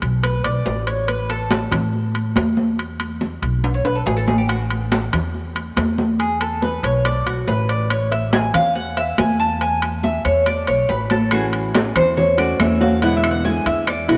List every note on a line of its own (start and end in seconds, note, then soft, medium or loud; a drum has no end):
0.02 0.42 B1 loud
0.02 high conga soft
0.02 high timbale medium
0.23 0.44 B4 medium
0.23 high conga soft
0.23 high timbale medium
0.44 0.64 B1 medium
0.44 0.84 D5 loud
0.44 high conga soft
0.44 high timbale medium
0.66 1.66 A1 medium
0.66 high conga soft
0.66 low timbale loud
0.87 1.08 C#5 medium
0.87 high timbale medium
1.08 1.29 B4 medium
1.08 high conga soft
1.08 high timbale medium
1.29 1.69 A4 medium
1.29 high conga soft
1.29 high timbale medium
1.51 high conga loud
1.51 high timbale medium
1.51 low timbale medium
1.72 2.32 A2 medium
1.72 high conga soft
1.72 low conga medium
1.72 high timbale loud
1.93 high conga soft
2.14 high conga soft
2.14 high timbale medium
2.36 3.36 E2 medium
2.36 high conga medium
2.36 high timbale medium
2.36 low timbale medium
2.57 high conga medium
2.78 high conga soft
2.78 high timbale medium
3.00 high conga soft
3.00 high timbale medium
3.21 high conga medium
3.21 low timbale medium
3.42 3.82 B1 loud
3.42 high conga soft
3.42 high timbale medium
3.63 high conga soft
3.63 high timbale medium
3.74 3.85 C#5 medium
3.85 4.05 B1 medium
3.85 3.95 B4 medium
3.85 high conga soft
3.85 high timbale medium
3.95 4.06 A4 medium
4.06 5.07 A1 medium
4.06 4.16 G#4 medium
4.06 high conga soft
4.06 low timbale medium
4.17 4.27 A4 medium
4.27 4.38 G#4 medium
4.27 high conga medium
4.27 low timbale medium
4.38 4.48 G4 medium
4.49 4.62 F#4 medium
4.49 high conga soft
4.49 high timbale medium
4.70 high conga soft
4.70 high timbale medium
4.92 high conga loud
4.92 high timbale medium
4.92 low timbale medium
5.13 5.73 E2 medium
5.13 high conga soft
5.13 low conga medium
5.13 high timbale medium
5.34 high conga soft
5.55 high conga soft
5.55 high timbale medium
5.77 6.77 E2 medium
5.77 high conga medium
5.77 high timbale loud
5.77 low timbale medium
5.98 high conga medium
6.19 6.40 G#4 medium
6.19 high conga soft
6.19 high timbale medium
6.41 6.61 A4 medium
6.41 high conga soft
6.41 high timbale medium
6.62 6.83 B4 medium
6.62 high conga medium
6.62 low timbale medium
6.83 7.23 B1 loud
6.83 7.04 C#5 medium
6.83 high conga soft
6.83 high timbale medium
7.05 7.26 D5 loud
7.05 high conga soft
7.05 high timbale medium
7.26 7.46 B1 medium
7.26 7.47 F#4 medium
7.26 high conga soft
7.26 high timbale medium
7.47 8.48 A1 medium
7.47 7.68 B4 medium
7.47 high conga soft
7.47 low timbale medium
7.69 7.90 D5 loud
7.69 high timbale medium
7.90 8.11 C#5 medium
7.90 high conga soft
7.90 high timbale loud
8.12 8.32 E5 medium
8.12 high conga soft
8.12 high timbale medium
8.33 8.53 G#5 loud
8.33 high conga loud
8.33 high timbale medium
8.33 low timbale medium
8.54 9.14 E2 medium
8.54 8.75 F5 medium
8.54 high conga soft
8.54 low conga medium
8.54 high timbale loud
8.75 8.96 F#5 loud
8.75 high conga soft
8.97 9.18 E5 loud
8.97 high conga soft
8.97 high timbale medium
9.18 10.19 E2 medium
9.18 9.39 G#5 medium
9.18 high conga medium
9.18 high timbale medium
9.18 low timbale loud
9.40 9.60 A5 loud
9.61 10.01 G#5 medium
9.61 high conga soft
9.61 high timbale medium
9.82 high conga soft
9.82 high timbale medium
10.03 10.24 E5 medium
10.03 high conga medium
10.03 low timbale medium
10.25 10.65 E2 loud
10.25 10.46 C#5 medium
10.25 high conga soft
10.25 high timbale medium
10.46 10.67 D5 medium
10.46 high conga soft
10.46 high timbale medium
10.67 10.87 B1 medium
10.67 10.88 C#5 loud
10.67 high conga soft
10.67 high timbale medium
10.89 11.90 A1 medium
10.89 11.10 B4 medium
10.89 high conga soft
10.89 low timbale medium
11.10 11.31 A4 medium
11.10 high conga medium
11.10 high timbale medium
11.31 11.73 E3 medium
11.31 11.74 A3 medium
11.31 11.74 C#4 medium
11.31 11.74 F#4 medium
11.31 11.45 G#4 medium
11.31 high conga soft
11.31 high timbale medium
11.31 claves medium
11.53 high conga soft
11.53 high timbale medium
11.74 12.15 E3 soft
11.74 12.16 A3 soft
11.74 12.16 C#4 medium
11.74 12.16 F#4 medium
11.74 high conga loud
11.74 high timbale medium
11.74 low timbale medium
11.96 12.56 E2 loud
11.96 12.16 C5 medium
11.96 high conga soft
11.96 low conga medium
11.96 high timbale loud
11.96 claves medium
12.17 12.38 C#5 medium
12.17 muted nylon-string guitar stroke medium
12.17 high conga soft
12.17 low conga medium
12.38 12.59 A3 medium
12.38 12.59 C#4 medium
12.38 12.58 F#4 medium
12.38 12.59 D5 medium
12.38 high conga soft
12.38 high timbale medium
12.59 13.60 E2 medium
12.59 12.80 E3 medium
12.59 12.80 A3 medium
12.59 12.80 C#4 medium
12.59 12.79 F#4 medium
12.59 12.81 E5 medium
12.59 high conga medium
12.59 high timbale loud
12.59 low timbale medium
12.59 claves medium
12.81 13.02 A3 medium
12.81 13.02 C#4 medium
12.81 13.01 F#4 medium
12.81 13.02 F5 medium
12.81 high conga medium
13.02 13.44 B2 medium
13.02 13.43 D3 medium
13.02 13.44 G#3 medium
13.02 13.44 B3 medium
13.02 13.45 E4 medium
13.02 13.16 F#5 loud
13.02 high conga soft
13.02 high timbale medium
13.17 13.31 E5 loud
13.24 high conga soft
13.24 high timbale medium
13.24 claves medium
13.31 13.45 F#5 medium
13.45 13.86 D3 medium
13.45 13.86 G#3 medium
13.45 13.87 B3 medium
13.45 13.87 E4 medium
13.45 13.66 G#5 loud
13.45 high conga medium
13.45 low timbale medium
13.66 14.06 E2 medium
13.66 13.87 E5 medium
13.66 high conga soft
13.66 high timbale medium
13.87 14.08 D5 medium
13.87 muted nylon-string guitar stroke medium
13.87 high conga soft
13.87 high timbale medium
13.87 claves medium
14.08 14.18 B1 medium
14.08 14.18 D3 medium
14.08 14.18 G#3 medium
14.08 14.18 B3 medium
14.08 14.18 E4 medium
14.08 14.18 F#4 medium
14.08 high conga soft
14.08 high timbale medium